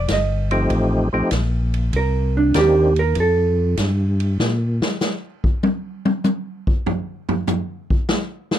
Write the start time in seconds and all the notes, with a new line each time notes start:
0.08 G1, kick, snare, hi-hat pedal, ride
0.12 D#5
0.51 F3 A3 C4 D#4 G4, ride
0.70 A1, kick, ride
1.13 A1 F3 A3 C4 D#4 G4
1.31 A#1, kick, snare, hi-hat pedal, ride
1.74 ride
1.93 C2 A#4, kick, ride
2.37 D4
2.54 D#2 D#3 A#3 C4 D4 G4, kick, snare, hi-hat pedal, ride
2.96 A#4, ride
3.15 F2, kick, ride
3.20 A4
3.77 G2, kick, snare, hi-hat pedal, ride
4.20 ride
4.39 A#2, snare
4.82 snare
5.01 snare, hi-hat pedal
5.44 kick
5.63 high tom
6.05 high tom
6.24 hi-hat pedal, high tom
6.67 kick
6.86 floor tom
7.29 floor tom
7.47 floor tom, hi-hat pedal
7.90 kick
8.09 snare
8.51 snare